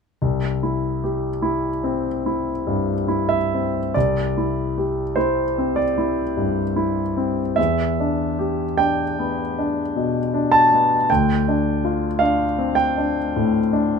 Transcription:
grand piano
0.22 C2
0.63 E4
1.04 G4
1.42 E4
1.84 C4
2.26 E4
2.67 G2
3.08 E4
3.29 E5
3.54 C4
3.94 C2 D5
4.38 E4
4.78 G4
5.16 E4 C5
5.58 C4
5.76 D5
5.98 E4
6.37 G2
6.76 E4
7.17 C4
7.56 E2 E5
8.00 D4
8.39 G4
8.78 D4 G5
9.19 B3
9.59 D4
9.96 B2
10.34 D4
10.52 A5
10.73 B3
11.10 D2 G5
11.48 D4
11.85 F4
12.19 D4 F5
12.58 C4
12.75 G5
12.97 D4
13.36 A2
13.73 D4

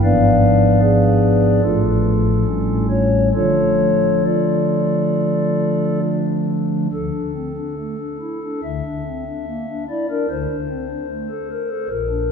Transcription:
pipe organ
0.03 G#1 G#2 F3 B3 D4 B4 D5 F5
0.81 G#4 B4 D5
1.63 A1 A2 F3 A3 D4 F4 A4
2.46 A1 A2 G3 A3 C#4
2.89 C#5
3.34 D3 F3 A3 D4 F4 A4 C#5
4.25 F4 A4 D5
6.93 D2 D3 A4
7.14 D4
7.34 C4
7.56 D4
7.78 A3
7.98 D4
8.21 E4
8.43 D4
8.63 D2 D3 E5
8.86 D4
9.07 C4
9.27 D4
9.47 A#3
9.69 D4
9.89 E4 D5
10.10 D4 A#4
10.30 D2 D3 C5
10.51 D4
10.69 C4
10.89 D4
11.10 A3
11.30 A4
11.51 A#4
11.70 A4
11.89 A#1 A#2 A#4
12.10 D4

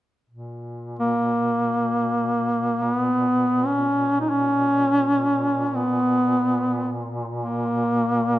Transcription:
duduk
0.30 A#2
0.99 A#3
2.82 A#3
2.95 B3
3.66 C#4
4.21 D#4
4.30 C#4
5.67 C#4
5.75 B3
7.37 A#3

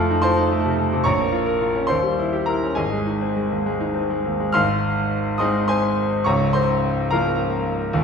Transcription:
grand piano
Already playing: F2 A3 F4 A4 F5 C6 F6
0.10 D#4
0.22 F4 C5 A5 C6
0.37 D#4
0.52 A3
0.65 C3
0.78 A3
0.93 C3
1.04 A#1 C#5 A#5 C#6
1.19 A#3
1.32 F4
1.46 A#4
1.61 F4
1.75 C#4
1.87 D#2 C5 C6
2.03 G3
2.19 E4
2.33 G4
2.46 E4 A#4 A#5
2.63 C#4
2.75 G#1 G#4 D#5 G#5
2.92 G#3
3.06 D#4
3.21 C4
3.36 G#3
3.51 D#2
3.66 G#3
3.80 D#4
3.94 C4
4.10 G#3
4.26 D#2
4.40 G#3
4.52 G#1 G#2 F5 C6 F6
5.38 G#3 C4 D#4 D#5 C6 D#6
5.68 C5 G#5 C6
6.24 C#1 C#2 C#5 A#5 C#6
6.53 C5 C6
7.11 F3 A#3 F4 A#4 F5 A#5
7.93 D#1 D#2

